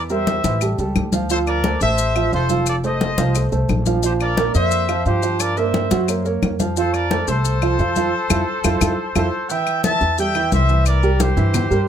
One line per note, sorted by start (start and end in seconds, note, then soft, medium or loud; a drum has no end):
0.00 0.38 E2 medium
0.09 0.38 G3 medium
0.09 0.38 G4 medium
0.09 0.38 A#4 medium
0.09 0.58 C5 medium
0.09 0.75 E5 medium
0.09 high conga soft
0.09 maracas soft
0.27 high conga medium
0.27 maracas soft
0.44 0.76 A1 medium
0.44 0.58 E3 medium
0.44 0.58 E4 medium
0.44 0.59 E5 medium
0.44 high conga medium
0.44 maracas medium
0.61 0.76 G3 medium
0.61 0.76 G4 medium
0.61 0.76 A4 medium
0.61 high conga soft
0.61 claves medium
0.61 maracas medium
0.78 0.94 C#2 medium
0.78 1.07 G3 medium
0.78 1.07 G4 medium
0.78 1.08 A4 medium
0.78 high conga soft
0.78 maracas soft
0.96 1.75 D2 medium
0.96 high conga medium
0.96 claves medium
0.96 maracas soft
1.13 1.27 F3 medium
1.13 1.27 F4 medium
1.13 1.27 F5 medium
1.13 high conga medium
1.13 maracas medium
1.30 1.58 F3 medium
1.30 1.58 F4 medium
1.30 1.38 A4 medium
1.30 1.38 C5 medium
1.30 1.59 F5 medium
1.30 high conga soft
1.30 maracas medium
1.47 1.79 A#4 medium
1.47 1.79 D5 medium
1.47 high conga soft
1.47 claves medium
1.47 maracas soft
1.64 1.79 A3 medium
1.64 1.79 A4 medium
1.64 1.79 C5 medium
1.64 high conga medium
1.64 maracas soft
1.81 2.29 A1 medium
1.81 2.10 A3 medium
1.81 2.10 A4 medium
1.81 2.29 C5 medium
1.81 2.10 C5 medium
1.81 2.29 E5 loud
1.81 high conga soft
1.81 maracas medium
1.98 high conga soft
1.98 maracas medium
2.15 2.30 F3 medium
2.15 2.30 F4 medium
2.15 2.30 F5 medium
2.15 high conga soft
2.15 claves medium
2.15 maracas soft
2.32 3.12 F1 medium
2.32 2.47 F3 medium
2.32 2.47 F4 medium
2.32 2.65 A4 medium
2.32 2.65 C5 medium
2.32 2.47 F5 medium
2.32 high conga soft
2.32 maracas soft
2.49 2.78 F3 medium
2.49 2.78 F4 medium
2.49 2.78 F5 medium
2.49 high conga medium
2.49 maracas medium
2.66 2.75 A4 medium
2.66 2.75 D5 medium
2.66 high conga soft
2.66 claves medium
2.66 maracas medium
2.84 3.12 A3 medium
2.84 3.12 A4 medium
2.84 3.12 C5 medium
2.84 3.49 C5 medium
2.84 3.49 D#5 loud
2.84 high conga soft
2.84 maracas soft
3.01 high conga medium
3.01 maracas soft
3.18 3.50 C2 medium
3.18 3.32 F3 medium
3.18 3.32 F4 medium
3.18 3.32 F5 medium
3.18 high conga medium
3.18 maracas medium
3.35 3.49 A3 medium
3.35 3.50 A4 medium
3.35 3.50 C5 medium
3.35 high conga soft
3.35 claves medium
3.35 maracas medium
3.52 3.68 C2 medium
3.52 3.80 A3 medium
3.52 3.80 A4 medium
3.52 3.80 C5 medium
3.52 high conga soft
3.52 maracas soft
3.69 4.49 A#1 medium
3.69 high conga medium
3.69 claves medium
3.69 maracas soft
3.86 4.01 F3 medium
3.86 4.01 F4 medium
3.86 4.01 F5 medium
3.86 high conga medium
3.86 maracas medium
4.03 4.31 F3 medium
4.03 4.32 F4 medium
4.03 4.12 G4 medium
4.03 4.11 C5 medium
4.03 4.32 F5 medium
4.03 high conga soft
4.03 maracas medium
4.20 4.53 A#4 medium
4.20 4.52 D5 medium
4.20 high conga soft
4.20 claves medium
4.20 maracas soft
4.37 4.52 A#3 medium
4.37 4.52 A#4 medium
4.37 4.52 D5 medium
4.37 high conga medium
4.37 maracas soft
4.54 5.02 F2 medium
4.54 4.83 A#3 medium
4.54 4.83 A#4 medium
4.54 5.03 C5 medium
4.54 4.83 D5 medium
4.54 5.02 E5 loud
4.54 high conga soft
4.54 maracas medium
4.71 high conga soft
4.71 maracas medium
4.89 5.03 F3 medium
4.89 5.03 F4 medium
4.89 5.03 F5 medium
4.89 high conga soft
4.89 claves medium
4.89 maracas soft
5.06 5.85 G2 medium
5.06 5.20 F3 medium
5.06 5.20 F4 medium
5.06 5.41 G4 medium
5.06 5.40 C5 medium
5.06 5.21 F5 medium
5.06 high conga soft
5.06 maracas soft
5.23 5.51 F3 medium
5.23 5.51 F4 medium
5.23 5.51 F5 medium
5.23 maracas medium
5.40 5.58 A#4 medium
5.40 5.57 D5 medium
5.40 high conga soft
5.40 claves medium
5.40 maracas medium
5.56 5.85 A#3 medium
5.56 5.86 A#4 medium
5.56 6.26 C5 medium
5.56 5.86 D5 medium
5.56 6.25 E5 medium
5.56 high conga soft
5.56 maracas soft
5.74 high conga medium
5.74 maracas soft
5.91 6.39 F#2 medium
5.91 6.06 F#3 medium
5.91 6.06 F#4 medium
5.91 6.06 F#5 medium
5.91 high conga medium
5.91 maracas medium
6.08 6.22 A#3 medium
6.08 6.23 A#4 medium
6.08 6.23 C#5 medium
6.08 high conga soft
6.08 claves medium
6.08 maracas medium
6.25 6.53 A#3 medium
6.25 6.53 A#4 medium
6.25 6.54 C#5 medium
6.25 high conga soft
6.25 maracas soft
6.42 7.22 F2 medium
6.42 high conga medium
6.42 claves medium
6.42 maracas soft
6.59 6.74 F3 medium
6.59 6.74 F4 medium
6.59 6.74 F5 medium
6.59 high conga medium
6.59 maracas medium
6.77 7.05 F3 medium
6.77 7.05 F4 medium
6.77 6.93 A4 medium
6.77 6.93 C5 loud
6.77 7.05 F5 medium
6.77 high conga soft
6.77 maracas medium
6.93 7.28 A#4 medium
6.93 7.28 D5 loud
6.93 high conga soft
6.93 claves medium
6.93 maracas soft
7.11 7.25 A3 medium
7.11 7.25 A4 medium
7.11 7.25 C5 medium
7.11 high conga loud
7.11 maracas soft
7.28 7.76 C2 medium
7.28 7.56 A3 medium
7.28 7.56 A4 medium
7.28 9.12 A4 medium
7.28 9.12 C5 medium
7.28 7.56 C5 medium
7.28 high conga soft
7.28 maracas medium
7.45 high conga soft
7.45 maracas medium
7.62 7.76 F3 medium
7.62 7.77 F4 medium
7.62 7.77 F5 medium
7.62 high conga soft
7.62 claves medium
7.62 maracas soft
7.79 8.11 F2 medium
7.79 7.94 F3 medium
7.79 7.94 F4 medium
7.79 7.94 F5 medium
7.79 high conga soft
7.79 maracas soft
7.96 8.10 F3 medium
7.96 8.11 F4 medium
7.96 8.11 F5 medium
7.96 high conga medium
7.96 maracas medium
8.30 8.43 F2 medium
8.30 8.41 E4 loud
8.30 8.41 F4 medium
8.30 8.41 A4 loud
8.30 high conga medium
8.30 claves loud
8.30 maracas medium
8.64 8.77 F2 loud
8.64 8.75 E4 medium
8.64 8.75 F4 medium
8.64 8.75 A4 loud
8.64 high conga loud
8.64 claves medium
8.64 maracas medium
8.81 8.94 F2 medium
8.81 8.92 E4 medium
8.81 8.92 F4 medium
8.81 8.92 A4 medium
8.81 high conga loud
8.81 claves loud
8.81 maracas loud
9.16 9.28 F2 medium
9.16 9.27 E4 loud
9.16 9.27 F4 medium
9.16 9.27 A4 medium
9.16 9.48 A4 medium
9.16 9.48 C5 medium
9.16 high conga medium
9.16 claves medium
9.16 maracas medium
9.50 9.78 E3 medium
9.50 9.78 E4 medium
9.50 9.84 E5 medium
9.50 9.79 E5 medium
9.50 9.84 G5 loud
9.50 high conga soft
9.50 maracas medium
9.67 high conga soft
9.67 claves medium
9.67 maracas soft
9.84 10.12 E3 medium
9.84 10.13 E4 medium
9.84 10.16 E5 medium
9.84 10.13 E5 medium
9.84 10.16 A5 loud
9.84 high conga medium
9.84 maracas medium
10.01 10.49 E2 medium
10.01 high conga soft
10.01 maracas soft
10.18 10.32 G3 medium
10.18 10.32 G4 medium
10.18 10.33 A4 medium
10.18 10.51 E5 medium
10.18 10.50 G5 loud
10.18 high conga soft
10.18 maracas medium
10.35 10.63 E3 medium
10.35 10.63 E4 medium
10.35 10.64 E5 medium
10.35 high conga soft
10.35 claves medium
10.35 maracas soft
10.52 11.32 C2 medium
10.52 10.84 C5 medium
10.52 10.84 E5 loud
10.52 high conga medium
10.52 maracas medium
10.69 10.97 E3 medium
10.69 10.97 E4 medium
10.69 10.97 E5 medium
10.69 maracas soft
10.86 11.18 A#4 medium
10.86 11.18 D5 medium
10.86 high conga soft
10.86 claves medium
10.86 maracas medium
11.03 11.31 G3 medium
11.03 11.31 G4 medium
11.03 11.32 A#4 medium
11.03 high conga soft
11.03 maracas soft
11.20 11.88 G4 medium
11.20 11.87 C5 loud
11.20 high conga loud
11.20 maracas medium
11.37 11.69 G2 loud
11.37 11.65 E3 medium
11.37 11.65 E4 medium
11.37 11.65 E5 medium
11.37 high conga soft
11.37 maracas soft
11.54 high conga soft
11.54 low conga medium
11.54 claves medium
11.54 maracas medium
11.70 11.87 G2 medium
11.70 11.88 G3 medium
11.70 11.88 G4 medium
11.70 11.88 A#4 medium
11.70 high conga soft
11.70 maracas soft